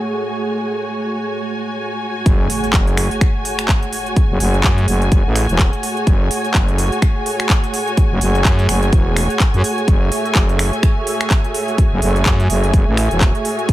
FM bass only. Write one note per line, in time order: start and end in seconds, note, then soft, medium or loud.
2.26 2.48 F#1 loud
2.74 3.09 F#1 loud
4.30 4.39 F#1 loud
4.40 4.62 F#1 loud
4.64 4.86 F#2 loud
4.88 5.10 F#1 medium
5.12 5.23 F#1 loud
5.25 5.47 A1 loud
5.49 5.71 E1 loud
6.07 6.29 F#1 loud
6.55 6.90 F#1 loud
8.11 8.20 F#1 loud
8.21 8.43 F#1 loud
8.45 8.67 F#2 loud
8.69 8.91 F#1 medium
8.93 9.28 E1 loud
9.54 9.62 F#2 loud
9.88 10.10 F#1 loud
10.36 10.71 F#1 loud
11.92 12.01 F#1 medium
12.02 12.24 F#1 loud
12.26 12.48 F#2 loud
12.50 12.72 F#1 medium
12.74 12.85 F#1 loud
12.87 13.09 A1 loud
13.11 13.33 E1 medium
13.69 13.73 F#1 loud